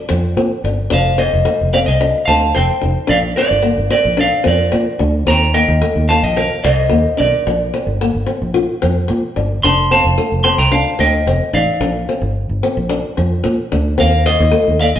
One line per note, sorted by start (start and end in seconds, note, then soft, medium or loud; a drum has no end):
0.09 0.34 F2 loud
0.09 0.28 C4 medium
0.37 0.49 A#2 loud
0.37 0.56 C4 medium
0.64 0.88 G1 medium
0.64 0.83 D4 medium
0.90 1.28 F1 loud
0.90 1.09 D4 loud
0.90 1.17 C5 medium
0.90 1.18 F5 medium
1.18 1.37 C4 medium
1.18 1.70 C5 medium
1.18 1.70 D#5 medium
1.33 1.45 F1 loud
1.45 1.64 A3 medium
1.61 1.85 F1 medium
1.73 1.92 C4 medium
1.73 1.78 D5 medium
1.73 1.79 F5 medium
1.86 2.12 C2 medium
1.86 2.25 D#5 medium
1.86 2.27 G5 loud
2.01 2.19 D4 loud
2.25 2.52 D2 loud
2.25 2.47 C4 medium
2.25 2.52 F5 medium
2.25 2.56 A5 loud
2.55 2.68 F1 loud
2.55 3.06 C5 medium
2.55 3.12 G5 loud
2.55 muted steel-string acoustic guitar stroke medium
2.81 2.95 F1 medium
2.81 3.01 D#4 medium
3.07 3.34 A#1 loud
3.07 3.27 D4 loud
3.07 3.17 D5 medium
3.07 3.18 F5 loud
3.36 3.56 C4 medium
3.36 3.87 A#4 medium
3.36 3.88 D5 loud
3.51 3.75 G1 medium
3.62 3.82 A#3 medium
3.78 3.90 G1 medium
3.90 4.10 C4 medium
3.90 4.17 A#4 medium
3.90 4.18 D5 medium
4.05 4.29 A#1 loud
4.17 4.36 D4 loud
4.17 4.45 D5 medium
4.17 4.47 F5 loud
4.44 4.70 F2 medium
4.44 4.63 C4 loud
4.44 4.97 A#4 medium
4.44 4.98 D5 medium
4.72 4.85 A#2 loud
4.72 4.91 C4 medium
4.99 5.24 D2 loud
4.99 5.18 D4 medium
5.27 5.63 D#2 loud
5.27 5.46 C4 loud
5.27 5.53 G5 medium
5.27 5.56 A#5 loud
5.54 5.73 A#3 medium
5.54 6.05 D#5 medium
5.54 6.08 G5 loud
5.68 5.81 D#2 loud
5.82 6.01 A3 medium
5.96 6.20 D#2 medium
6.09 6.29 A#3 medium
6.09 6.22 F5 medium
6.09 6.23 A5 medium
6.23 6.47 A#1 loud
6.23 6.36 D#5 medium
6.23 6.37 G5 medium
6.36 6.62 A#4 medium
6.36 6.64 F5 medium
6.36 muted steel-string acoustic guitar stroke loud
6.64 6.88 C2 medium
6.64 7.15 C5 medium
6.64 7.15 D#5 loud
6.64 muted steel-string acoustic guitar stroke medium
6.89 7.04 D#2 medium
6.89 7.09 A#3 medium
7.17 7.31 B1 medium
7.17 7.36 D4 medium
7.17 7.97 A#4 medium
7.17 7.96 D5 medium
7.47 7.70 A#1 loud
7.47 7.65 D4 loud
7.74 7.92 C4 medium
7.87 8.11 G1 medium
8.01 8.20 A#3 medium
8.15 8.26 G1 medium
8.26 8.46 C4 medium
8.42 8.65 A#1 medium
8.54 8.73 F4 loud
8.82 9.07 F2 medium
8.82 9.01 C4 medium
9.08 9.22 A#2 loud
9.08 9.27 C4 medium
9.36 9.61 G1 loud
9.36 9.55 D4 medium
9.63 10.00 F1 medium
9.63 9.83 D4 loud
9.63 9.90 A5 medium
9.63 9.92 C6 loud
9.91 10.10 C4 medium
9.91 10.43 F5 medium
9.91 10.44 A5 loud
10.05 10.17 F1 loud
10.18 10.37 A3 medium
10.32 10.56 F1 medium
10.44 10.63 C4 medium
10.44 10.58 A5 medium
10.44 10.59 C6 loud
10.58 10.83 C2 medium
10.58 10.71 G5 medium
10.58 10.73 A#5 medium
10.72 10.91 D4 loud
10.72 10.98 F5 medium
10.72 11.00 A5 medium
10.99 11.23 D2 loud
10.99 11.18 C4 medium
10.99 11.51 D#5 medium
10.99 11.51 G5 medium
11.26 11.39 F1 medium
11.26 11.46 C4 medium
11.53 11.66 A1 loud
11.53 11.72 D#4 medium
11.53 12.32 D5 medium
11.53 12.32 F5 medium
11.80 12.05 A#1 loud
11.80 12.00 D4 loud
12.09 12.27 C4 medium
12.22 12.46 G1 medium
12.49 12.61 G1 medium
12.63 12.82 C4 medium
12.77 13.01 A#1 loud
12.89 13.08 D4 loud
13.17 13.42 F2 medium
13.17 13.36 C4 medium
13.44 13.57 A#2 loud
13.44 muted steel-string acoustic guitar stroke medium
13.72 13.96 D2 loud
13.72 13.91 D4 medium
13.98 14.36 D#2 loud
13.98 14.17 C4 loud
13.98 14.25 A#4 medium
13.98 14.25 F5 loud
14.26 14.77 C5 medium
14.26 14.80 D#5 medium
14.26 muted steel-string acoustic guitar stroke medium
14.40 14.52 D#2 loud
14.51 14.71 A3 medium
14.68 14.92 D#2 medium
14.79 14.98 A#3 medium
14.79 14.87 D5 medium
14.79 14.86 F5 loud
14.96 15.00 A#1 medium
14.96 15.00 D#5 medium
14.96 15.00 G5 medium